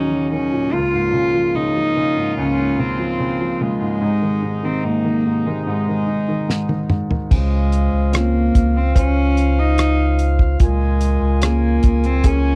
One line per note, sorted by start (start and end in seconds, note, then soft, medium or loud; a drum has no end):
0.00 0.70 D#2 medium
0.00 0.53 A#2 soft
0.00 3.99 C#3 medium
0.00 0.32 D#3 soft
0.00 0.11 F#3 soft
0.00 0.70 F#3 medium
0.00 0.32 C#4 medium
0.00 0.70 D#4 medium
0.11 0.71 F#3 soft
0.32 0.72 D#3 soft
0.32 0.74 C#4 medium
0.53 0.73 A#2 soft
0.73 2.36 C#2 medium
0.73 3.99 A#3 medium
0.73 1.57 F4 medium
0.73 3.99 F4 medium
0.94 2.15 G#2 soft
1.13 1.54 C#3 soft
1.34 1.75 F3 soft
1.55 1.95 C#3 soft
1.55 2.38 D#4 medium
1.76 2.97 F3 soft
1.97 2.77 C#3 soft
2.17 2.57 G#2 soft
2.38 3.98 C#2 medium
2.38 2.81 C#4 medium
2.58 3.79 G#2 soft
2.79 3.18 C#3 soft
2.79 3.64 C4 medium
2.99 3.39 F3 soft
3.19 3.59 C#3 soft
3.40 4.00 F3 soft
3.61 4.01 C#3 soft
3.61 4.66 G#3 medium
3.81 4.00 G#2 soft
4.01 4.41 G#2 medium
4.01 7.15 C3 medium
4.01 7.15 G#3 medium
4.01 7.15 D#4 medium
4.22 4.62 D#3 soft
4.42 4.82 G#2 soft
4.63 5.03 D#3 soft
4.63 4.86 C4 medium
4.84 5.24 G#2 soft
4.84 5.48 A#3 medium
5.04 5.45 D#3 soft
5.25 5.66 G#2 soft
5.46 5.87 D#3 soft
5.46 5.66 G#3 medium
5.66 6.06 G#2 medium
5.66 6.86 G#3 medium
5.88 6.27 D#3 soft
6.07 6.47 G#2 soft
6.28 6.68 D#3 soft
6.49 6.88 G#2 soft
6.49 snare soft
6.69 7.08 D#3 soft
6.69 high tom medium
6.90 7.30 G#2 soft
6.90 mid tom medium
7.10 7.30 D#3 soft
7.10 floor tom medium
7.31 7.89 C#2 loud
7.31 10.56 C#3 medium
7.31 8.17 G#3 medium
7.31 12.55 F4 medium
7.31 10.57 C5 medium
7.31 10.57 F5 medium
7.31 kick medium
7.31 crash medium
7.72 closed hi-hat medium
7.93 8.51 C#2 medium
8.13 8.78 A#3 medium
8.13 8.93 C4 soft
8.13 8.93 C#4 soft
8.13 8.93 F4 soft
8.13 cross-stick loud
8.13 closed hi-hat medium
8.55 8.93 C#2 loud
8.55 kick medium
8.55 closed hi-hat medium
8.76 8.96 C4 medium
8.95 10.56 C#2 loud
8.95 9.75 C#4 soft
8.95 9.60 C#4 medium
8.95 9.76 F4 soft
8.95 9.75 C5 soft
8.95 kick medium
8.95 closed hi-hat medium
9.37 closed hi-hat medium
9.59 10.20 D#4 medium
9.78 cross-stick medium
9.78 closed hi-hat medium
10.19 closed hi-hat medium
10.39 kick medium
10.60 11.18 C#2 medium
10.60 12.55 A#2 medium
10.60 11.45 G#3 medium
10.60 12.55 A#4 medium
10.60 12.55 G#5 medium
10.60 kick medium
10.60 closed hi-hat medium
11.01 closed hi-hat medium
11.21 11.79 C#2 medium
11.42 12.22 A#3 soft
11.42 12.07 A#3 medium
11.42 12.22 C#4 soft
11.42 12.22 G#4 soft
11.42 cross-stick loud
11.42 closed hi-hat medium
11.83 12.22 C#2 medium
11.83 kick medium
11.83 closed hi-hat medium
12.04 12.28 C4 medium
12.04 closed hi-hat soft
12.24 12.55 C#2 loud
12.24 12.55 A#3 medium
12.24 12.55 C#4 soft
12.24 12.55 C#4 medium
12.24 12.55 G#4 medium
12.24 kick medium
12.24 closed hi-hat medium